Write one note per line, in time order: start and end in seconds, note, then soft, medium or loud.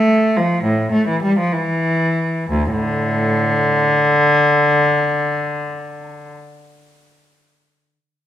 0.00 0.38 A3 medium
0.37 0.65 F3 medium
0.64 0.93 A2 medium
0.92 1.07 A3 medium
1.08 1.23 E3 medium
1.23 1.38 G3 medium
1.39 1.53 F3 medium
1.52 2.51 E3 medium
2.51 2.72 D2 medium
2.71 3.93 A2 medium
2.71 6.30 D3 medium